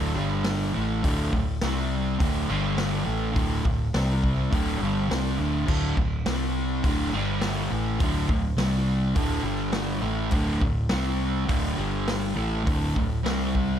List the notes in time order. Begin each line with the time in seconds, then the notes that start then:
Already playing: D1 D2 A2 D3
0.15 G1 G2 D3 G3
0.45 snare, open hi-hat
0.74 A1 A2 E3 A3
1.03 D1 D2 A2 D3, kick, open hi-hat
1.32 D1 D2 A2, kick
1.61 C2 C3 G3 C4, snare, open hi-hat
2.19 D1 D2 A2 D3, kick, open hi-hat
2.49 G1 G2 D3 G3
2.78 snare, open hi-hat
3.05 A1 A2 E3 A3
3.34 D1 D2 A2 D3, kick, open hi-hat
3.64 D1 D2 A2, kick
3.93 C2 C3 G3 C4, snare, open hi-hat
4.24 kick
4.51 D1 D2 A2 D3, kick, open hi-hat
4.80 G1 G2 D3 G3
5.09 C2 C3 G3 C4, snare, open hi-hat
5.37 D1 D2 A2 D3
5.67 D1 D2 A2 D3, kick, crash
5.97 D1 D2 A2, kick
6.25 C2 C3 G3 C4, snare, open hi-hat
6.84 D1 D2 A2 D3, kick, open hi-hat
7.13 G1 G2 D3 G3
7.42 snare, open hi-hat
7.70 A1 A2 E3 A3
8.00 D1 D2 A2 D3, kick, open hi-hat
8.29 D1 D2 A2, kick
8.57 C2 C3 G3 C4, snare, open hi-hat
9.15 D1 D2 A2 D3, kick, open hi-hat
9.43 G1 G2 D3 G3
9.73 snare, open hi-hat
10.01 A1 A2 E3 A3
10.31 D1 D2 A2 D3, kick, open hi-hat
10.61 D1 D2 A2, kick
10.89 C2 C3 G3 C4, snare, open hi-hat
11.46 D1 D2 A2 D3, kick, open hi-hat
11.77 G1 G2 D3 G3
12.08 snare, open hi-hat
12.35 A1 A2 E3 A3
12.64 D1 D2 A2 D3, kick, open hi-hat
12.96 D1 D2 A2, kick
13.23 C2 C3 G3 C4, snare, open hi-hat
13.55 kick